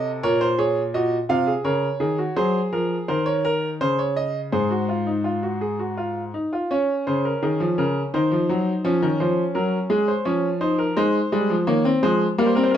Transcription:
Already playing: C3 A4 D#5
0.23 A#2 A#4 C#5
0.41 C5
0.58 G#4 C#5
0.94 A#2 F#4 D#5
1.29 C3 F4 F5
1.47 G#4
1.64 C#3 A#4 C#5
2.00 D#3 G#4
2.18 F#4
2.36 F#3 G#4 C5
2.73 F3 A#4
3.08 D#3 A#4 C5
3.26 C#5
3.45 A#4
3.81 C#3 C5
3.99 C#5
4.17 D#5
4.52 G#2 G#4 C5
4.71 F#4
4.89 F4
5.07 D#4
5.24 F4
5.43 F#4
5.61 G#4
5.79 F#4
5.97 F4
6.34 D#4
6.53 F4
6.71 C#4 C#5
7.07 C#3 C5
7.25 A#4
7.42 D#3 G#4
7.60 F3
7.78 C#3 A#4
8.14 D#3 D#4 C5
8.32 F3
8.49 F#3
8.85 F3 C#4 C#5
9.02 D#3
9.20 F3 C5
9.55 F#3 A#4
9.90 G#3 G#4
10.08 C5
10.25 F3 C#4 C#5
10.61 D#4 C5
10.79 A#4
10.97 G#3 D#4 C5
11.32 G3 G#3
11.50 F3
11.67 D#3 A#3 C#5
11.85 C4
12.03 F3 G#3 C5
12.38 G3 A#3 A#4
12.46 C5
12.55 C4 A#4
12.63 C5
12.71 A#4

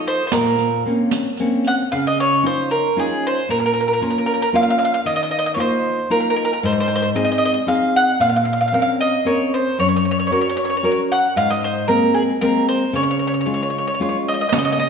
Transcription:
Already playing: D#4 F4 A4
0.07 C5
0.27 C5
0.32 A#2 A#4, riq
0.59 riq
0.86 A#3 C4 C#4
1.11 riq
1.37 A#3 C4 C#4, riq
1.64 F#5, riq
1.92 C#3 F5
2.07 D#5
2.20 C#5
2.43 C#4 D#4 F4 C5
2.71 A#4
2.96 C#4 D#4 F4 G#4
3.27 C5
3.49 A#2 A#4
3.60 A#4
3.66 A#4
3.73 A#4
3.81 A#4
3.88 A#4
3.93 A#4
4.01 A#3 C#4 F4 A#4
4.10 A#4
4.18 A#4
4.26 A#4
4.34 A#4
4.42 A#4
4.53 A#3 C#4 F4 F5
4.63 F5
4.70 F5
4.79 F5
4.85 F5
4.94 F5
5.06 D#3 D#5
5.16 D#5
5.23 D#5
5.31 D#5
5.39 D#5
5.46 D#5
5.54 A#3 D#4 F4 C#5
5.60 C5
6.10 A#3 D#4 F4 A#4
6.20 A#4
6.30 A#4
6.36 A#4
6.45 A#4
6.53 A#4
6.63 G#2 C5
6.72 C5
6.80 C5
6.88 C5
6.95 C5
7.02 C5
7.15 C4 D#4 G#4 D#5
7.24 D#5
7.31 D#5
7.38 D#5
7.45 D#5
7.54 D#5
7.67 C4 D#4 G#4 F5
7.96 F#5
8.20 A#2 F5
8.29 F5
8.36 F5
8.45 F5
8.53 F5
8.61 F5
8.68 F5
8.72 C4 C#4 A#4 F5
8.82 F5
9.01 D#5
9.25 C4 C#4 A#4 C#5
9.54 C5
9.79 F#2 C#5
9.89 C#5
9.96 C#5
10.05 C#5
10.11 C#5
10.19 C#5
10.27 C#5
10.31 C#4 F#4 A#4 C#5
10.41 C#5
10.49 C#5
10.57 C#5
10.65 C#5
10.70 C#5
10.77 C#5
10.83 C#4 F#4 A#4 C#5
10.91 C#5
11.12 F#5
11.36 G#2 F5
11.50 D#5
11.64 C5
11.88 G#3 A#3 C4 A#4
12.14 G#4
12.41 G#3 A#3 C4 A#4
12.69 C5
12.93 C#3 C#5
13.03 C#5
13.11 C#5
13.19 C#5
13.27 C#5
13.34 C#5
13.41 C#5
13.46 G#3 C#4 F4 C#5
13.54 C#5
13.63 C#5
13.70 C#5
13.78 C#5
13.87 C#5
13.94 C#5
14.00 G#3 C#4 F4 C#5
14.09 C#5
14.28 D#5
14.34 D#5
14.41 D#5
14.49 D#5, riq
14.53 C#3
14.59 D#5
14.65 D#5
14.72 D#5
14.79 D#5

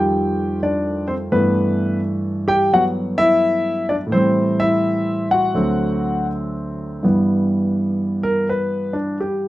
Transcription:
Already playing: F2 D#3 G3 A3 F4 G4 G5
0.63 D4 D5
1.08 C4 C5
1.32 G2 E3 A3 B3 B4
2.48 G4 G5
2.72 F#3 B3 F#4 F#5
3.18 E4 E5
3.89 D4 D5
4.07 A2 E3
4.12 G3 C4 C5
4.18 C4
4.60 E4 E5
5.31 F#4 F#5
5.54 D2 D3 F#3 C4
7.03 G2 E3 G3 B3
8.23 A#4
8.49 B4
8.93 D4
9.20 G4

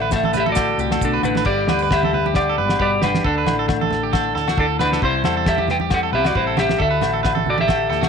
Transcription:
Already playing: A1 D3 E4 A4 E5
0.02 B4
0.11 A3 E4 A4, muted clean electric guitar stroke, kick, snare, low agogo, maracas
0.16 E5
0.24 A4, high conga
0.33 D4 G4 B4, snare, low conga, maracas
0.40 E5
0.46 F#4 A4, high conga
0.52 E4 D5, low agogo, maracas
0.56 A4, kick, snare
0.78 C2 A2 E4 G4, maracas
0.91 A4, snare, low conga, low agogo
1.00 B1 D4 E4, kick, maracas
1.05 A4
1.13 B4
1.22 A1 D4 B4, muted clean electric guitar stroke, low conga, low agogo, maracas
1.35 B4, snare, high conga
1.45 G1 G2 B3 G4 D5, kick, crash
1.67 D2 E4 B4, snare, high conga, low agogo
1.79 G4 B4
1.90 D3 G4 E5, kick, snare, low agogo
2.03 A4, high conga
2.13 B4, low conga
2.26 G4, high conga
2.34 D4 G4 D5, kick, snare, low agogo
2.49 A4
2.57 G1 G2 B4
2.69 snare, low agogo
2.79 G1 B2 G4 B4 D5, kick
3.02 D4 G4 B4, snare, low conga, low agogo
3.14 snare, high conga
3.24 D2 D3 D4 A4, kick
3.38 B4
3.45 A1 E4, snare, high conga, low agogo
3.59 A4
3.68 A3, muted clean electric guitar stroke, kick, snare, low agogo
3.81 A4, high conga
3.91 snare, low conga
4.03 G4
4.13 E4 A4, kick, snare, low agogo
4.34 D2 A2 A4, snare
4.48 F#4, snare, low agogo
4.57 D2 D4 A4, kick
4.79 D4 B4, snare, low conga, low agogo
4.93 A4, snare
5.02 C2 C3 G3 E4 C5, kick
5.24 E2 G4 A4, snare, high conga, low agogo
5.37 A4
5.45 E3 G4 E5, kick, snare, low agogo
5.58 G4, high conga
5.68 B4 G5, snare, low conga
5.80 G4, high conga
5.90 C4 A4 F#5, kick, snare, low agogo
6.03 A4
6.12 C2 C3 G4 B4 E5
6.24 F#4 D5, snare, low agogo
6.35 A1 E4 B4 C5, kick
6.47 A4
6.57 G4 E5, snare, low conga, low agogo
6.69 snare, high conga
6.78 D2 D3 F#4 A4 E5, kick
6.91 B4
7.01 A1, muted steel-string acoustic guitar stroke, snare, high conga, low agogo
7.13 A4
7.23 D4 B4, kick, snare, low agogo
7.35 A4, high conga
7.46 F#4 D5, low conga
7.58 G4 E5, high conga
7.68 A4, kick, snare, high conga, low agogo
7.90 D2 A2 A4, snare
8.01 F#4, snare, low conga, low agogo

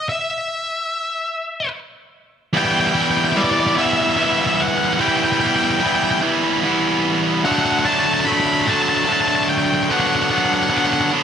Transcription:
0.09 E5
2.53 E3 G3 B3 E4 G5
2.65 G5
2.71 G5
2.80 G5
2.87 G5
2.94 G3 B3 E4 G5
3.02 G5
3.11 G5
3.17 G5
3.25 G5
3.32 E3 G3 B3 G5
3.37 E4 D5
3.44 D5
3.52 D5
3.60 D5
3.67 D5
3.76 E3 G3 B3 E4 E5
3.86 E5
3.93 E5
4.02 E5
4.09 E5
4.16 E3 G3 B3 E4 E5
4.24 E5
4.33 E5
4.41 E5
4.47 E5
4.55 E5
4.60 F#5
4.68 F#5
4.78 F#5
4.85 F#5
4.93 F#5
4.99 E3 G3 B3 E4 G5
5.08 G5
5.17 G5
5.24 G5
5.33 G5
5.40 G3 B3 E4 G5
5.47 G5
5.56 G5
5.64 G5
5.70 G5
5.80 E3 G3 B3 E4 G5
5.87 G5
5.95 G5
6.04 G5
6.11 G5
6.22 E3 G3 B3 E4
6.63 E3 G3 B3 E4
7.45 D3 F#3 A3 D4 F#5
7.52 F#5
7.59 F#5
7.66 F#5
7.72 F#5
7.79 F#5
7.85 F#3 A3 D4 A5
7.93 A5
7.99 A5
8.06 A5
8.14 A5
8.20 A5
8.25 D3 F#3 A3 D4 B5
8.33 B5
8.40 B5
8.46 B5
8.54 B5
8.61 B5
8.66 D3 F#3 A3 D4 A5
8.73 A5
8.82 A5
8.89 A5
8.97 A5
9.05 D3 F#3 A5
9.09 A3 D4 A5
9.21 A5
9.28 A5
9.35 A5
9.43 A5
9.49 G5
9.58 G5
9.66 G5
9.75 G5
9.83 G5
9.89 D3 F#3 B3 D4 F#5
10.00 F#5
10.06 F#5
10.16 F#5
10.23 F#5
10.30 F#3 B3 D4 F#5
10.38 F#5
10.46 F#5
10.54 F#5
10.63 F#5
10.70 D3 F#3 B3 D4 F#5
10.78 F#5
10.86 F#5
10.93 F#5
11.01 F#5
11.12 D3 F#3 B3 D4

